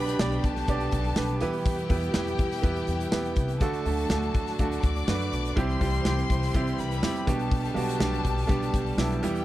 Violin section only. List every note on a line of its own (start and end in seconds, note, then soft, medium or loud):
0.00 0.43 B4 medium
0.00 0.42 B5 medium
0.45 1.40 A4 medium
0.45 1.40 A5 loud
1.41 3.57 G4 medium
1.41 3.57 G5 medium
3.61 4.81 A4 medium
3.61 4.81 A5 medium
4.84 5.55 D5 medium
4.84 5.55 D6 medium
5.56 6.76 C5 medium
5.56 6.76 C6 loud
6.78 7.26 B4 medium
6.78 7.26 B5 medium
7.28 9.19 A4 medium
7.28 9.19 A5 loud
9.22 9.45 G4 medium
9.22 9.45 G5 loud